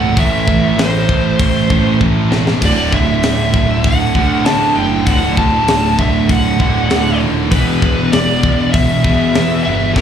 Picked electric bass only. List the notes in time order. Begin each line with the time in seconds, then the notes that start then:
Already playing: C1
0.17 A1
0.48 A1
0.77 A1
1.09 A1
1.39 A1
1.71 A1
2.01 A1
2.31 E1
2.62 D1
2.93 D1
3.24 D1
3.54 D1
3.84 D1
4.15 D2
4.46 D2
4.77 F#1
5.07 D1
5.38 D1
5.69 D1
5.99 D1
6.30 D1
6.60 D1
6.91 D1
7.22 D#1
7.52 E1
7.82 E1
8.14 E1
8.44 E1
8.74 E1
9.04 E2
9.36 E2
9.66 G1
9.97 E1